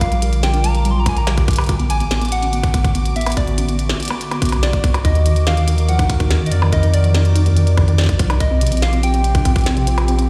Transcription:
Already playing: sub bass A#1, analog synth pad D3 G3 F4 A#4, synth texture D6
0.01 soft synth lead F5, kick, closed hi-hat
0.12 acid bass G3, closed hi-hat
0.22 acid bass G4, closed hi-hat
0.33 closed hi-hat
0.43 acid bass G4, soft synth lead G5, snare, closed hi-hat
0.54 acid bass D4, closed hi-hat
0.64 acid bass G3, soft synth lead A#5, closed hi-hat
0.75 closed hi-hat
0.85 acid bass G3, closed hi-hat
0.91 soft synth lead C6
0.96 acid bass G3
1.00 soft synth lead A#5
1.06 acid bass G3, soft synth lead G#5, kick, closed hi-hat, percussion blips
1.17 soft synth lead A#5, closed hi-hat
1.27 acid bass G3, snare, closed hi-hat
1.38 acid bass G4, kick, closed hi-hat
1.48 sub bass B1, kick, closed hi-hat
1.51 closed hi-hat
1.53 closed hi-hat
1.56 closed hi-hat
1.59 acid bass G4, closed hi-hat, percussion blips
1.61 closed hi-hat
1.64 closed hi-hat
1.66 acid bass F#4, closed hi-hat
1.69 analog synth pad B3 F#4, kick, closed hi-hat
1.79 acid bass B3, closed hi-hat
1.90 sub bass A1, soft synth lead G#5, closed hi-hat
2.00 acid bass B3, closed hi-hat
2.11 acid bass B3, snare, closed hi-hat
2.21 acid bass B3, closed hi-hat
2.25 closed hi-hat
2.28 closed hi-hat
2.32 soft synth lead F#5, closed hi-hat
2.42 acid bass C#4, closed hi-hat
2.53 acid bass B3, closed hi-hat
2.63 kick, closed hi-hat
2.74 acid bass B3, kick, closed hi-hat
2.84 acid bass F#4, kick, closed hi-hat
2.95 acid bass B3, closed hi-hat
3.06 closed hi-hat
3.16 acid bass B3, soft synth lead E5, closed hi-hat
3.21 closed hi-hat
3.26 acid bass B3, closed hi-hat, percussion blips
3.30 closed hi-hat
3.32 closed hi-hat
3.33 kick, closed hi-hat
3.37 acid bass B3, soft synth lead D5, closed hi-hat
3.48 closed hi-hat
3.58 acid bass C#4, closed hi-hat
3.68 acid bass B3, closed hi-hat
3.79 closed hi-hat
3.89 acid bass B3, snare
4.00 acid bass F#4, closed hi-hat
4.03 closed hi-hat
4.05 closed hi-hat
4.08 acid bass B3, closed hi-hat, percussion blips
4.21 closed hi-hat
4.31 acid bass B3, closed hi-hat, percussion blips
4.42 acid bass B3, kick, closed hi-hat
4.45 closed hi-hat
4.49 sub bass B1, closed hi-hat
4.52 acid bass B3, closed hi-hat, percussion blips
4.63 soft synth lead D5, snare, closed hi-hat
4.73 kick, closed hi-hat
4.84 sub bass C#2, acid bass B3, kick, closed hi-hat
4.94 acid bass F#4, closed hi-hat, percussion blips
5.05 sub bass D#2, analog synth pad D#3 D#4 A#4, acid bass D#4, soft synth lead D#5, kick, closed hi-hat
5.15 acid bass D#2, closed hi-hat
5.26 acid bass D#3, closed hi-hat
5.36 closed hi-hat
5.47 acid bass D#3, soft synth lead F5, snare, closed hi-hat
5.57 acid bass D#3, closed hi-hat
5.68 acid bass D#3, closed hi-hat
5.78 closed hi-hat
5.89 acid bass F3, soft synth lead F#5, closed hi-hat
5.99 acid bass D#4, kick, closed hi-hat
6.10 kick, closed hi-hat
6.20 acid bass D#4, kick, closed hi-hat
6.31 acid bass D#2, snare, closed hi-hat
6.41 acid bass D#3
6.46 soft synth lead D#5, closed hi-hat
6.52 sub bass F2, soft synth lead D5, closed hi-hat
6.62 acid bass D#3, percussion blips
6.73 acid bass D#3, soft synth lead D#5, kick, closed hi-hat
6.83 acid bass D#3, closed hi-hat
6.94 soft synth lead D5, closed hi-hat
7.04 acid bass F3, closed hi-hat
7.15 acid bass D#4, snare, closed hi-hat
7.25 closed hi-hat
7.36 acid bass D#4, closed hi-hat
7.46 acid bass D#2, closed hi-hat
7.57 acid bass D#3, closed hi-hat
7.67 closed hi-hat
7.77 acid bass D#3, kick, percussion blips
7.88 acid bass D#3, closed hi-hat
7.98 acid bass D#3, soft synth lead D5, snare, closed hi-hat
8.01 snare
8.04 snare
8.06 kick, snare, closed hi-hat
8.19 sub bass C2, acid bass F3, kick, closed hi-hat
8.30 acid bass D#4, closed hi-hat, percussion blips
8.40 analog synth pad C3 C4 F4 G4, soft synth lead D#5, kick, closed hi-hat
8.51 acid bass C4
8.61 sub bass A#1, acid bass C3, closed hi-hat
8.67 closed hi-hat
8.72 acid bass C4, closed hi-hat
8.77 closed hi-hat
8.82 soft synth lead F5, snare, closed hi-hat
8.93 acid bass C4, closed hi-hat
9.03 acid bass C4, soft synth lead G5, closed hi-hat
9.14 acid bass C4, closed hi-hat
9.24 closed hi-hat
9.35 acid bass D4, kick, closed hi-hat
9.45 acid bass C4, kick, closed hi-hat
9.56 kick, closed hi-hat
9.58 closed hi-hat
9.61 closed hi-hat
9.64 acid bass C4, snare, closed hi-hat
9.66 closed hi-hat
9.77 acid bass C3, closed hi-hat
9.87 acid bass C4, closed hi-hat
9.98 closed hi-hat, percussion blips
10.08 acid bass C4, closed hi-hat
10.19 acid bass C4, closed hi-hat

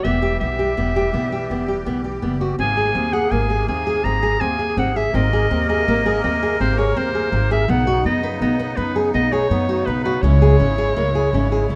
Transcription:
Already playing: accordion E3 G3
0.04 upright bass E1, nylon-string guitar B3, accordion G4, soprano saxophone E5
0.22 nylon-string guitar G4
0.40 upright bass B1, nylon-string guitar B3, soprano saxophone E5
0.59 nylon-string guitar G4
0.77 upright bass E1, nylon-string guitar B3
0.96 nylon-string guitar G4
1.13 upright bass B1, nylon-string guitar B3
1.32 nylon-string guitar G4
1.50 upright bass E1, nylon-string guitar B3
1.68 nylon-string guitar G4
1.86 upright bass B1, nylon-string guitar B3
2.04 nylon-string guitar G4
2.22 upright bass F#1, nylon-string guitar B3
2.41 nylon-string guitar F#4
2.58 upright bass G#1, accordion C3 A#3 G#4, nylon-string guitar C4, soprano saxophone G#5
2.77 nylon-string guitar G#4
2.95 upright bass D#2, nylon-string guitar C4
3.13 nylon-string guitar G#4, soprano saxophone F#5
3.31 upright bass G#1, nylon-string guitar A#3, soprano saxophone G#5
3.50 nylon-string guitar G#4
3.68 upright bass D#2, nylon-string guitar C4, soprano saxophone G#5
3.87 nylon-string guitar G#4
4.04 upright bass G#1, nylon-string guitar C4, soprano saxophone A#5
4.23 nylon-string guitar G#4
4.41 upright bass D#2, nylon-string guitar C4, soprano saxophone G#5
4.59 nylon-string guitar G#4
4.77 upright bass G#1, nylon-string guitar C4, soprano saxophone F#5
4.96 nylon-string guitar G#4, soprano saxophone E5
5.12 upright bass G#1, nylon-string guitar C4, accordion A#4, soprano saxophone D#5
5.33 nylon-string guitar G#4
5.51 upright bass D#2, nylon-string guitar C4
5.69 nylon-string guitar G#4, soprano saxophone D#5
5.88 upright bass G#1, nylon-string guitar A#3
6.06 nylon-string guitar G#4
6.24 upright bass D#2, nylon-string guitar C4, soprano saxophone D#5
6.43 nylon-string guitar G#4
6.60 upright bass G#1, nylon-string guitar C4, soprano saxophone C5
6.78 nylon-string guitar G#4, soprano saxophone C#5
6.96 upright bass D#2, nylon-string guitar C4, soprano saxophone C5
7.15 nylon-string guitar G#4
7.32 upright bass G#1, nylon-string guitar C4
7.51 nylon-string guitar G#4, soprano saxophone E5
7.68 upright bass B1, accordion C#3 B3 D#4, nylon-string guitar B3, soprano saxophone F#5
7.87 nylon-string guitar F#4
8.05 upright bass F#2, nylon-string guitar B3, soprano saxophone D#5
8.23 nylon-string guitar B4
8.41 upright bass B1, nylon-string guitar B3, soprano saxophone D#5
8.59 nylon-string guitar B4
8.77 upright bass F#2, nylon-string guitar B3, soprano saxophone B4
8.96 nylon-string guitar G#4
9.14 upright bass B1, nylon-string guitar B3, soprano saxophone D#5
9.32 nylon-string guitar G#4, soprano saxophone C#5
9.50 upright bass F#2, nylon-string guitar B3
9.69 nylon-string guitar F#4
9.86 upright bass B1, nylon-string guitar B3, soprano saxophone B4
10.04 nylon-string guitar F#4, soprano saxophone B4
10.22 upright bass C#2, accordion C#3 G#3 E4, nylon-string guitar C#4, soprano saxophone C#5
10.42 nylon-string guitar G#4
10.60 upright bass G#1, nylon-string guitar C#4
10.78 nylon-string guitar G#4
10.96 upright bass C#2, nylon-string guitar A#3
11.15 nylon-string guitar G#4
11.33 upright bass G#1, nylon-string guitar C#4
11.52 nylon-string guitar G#4
11.69 upright bass C#2, nylon-string guitar C#4

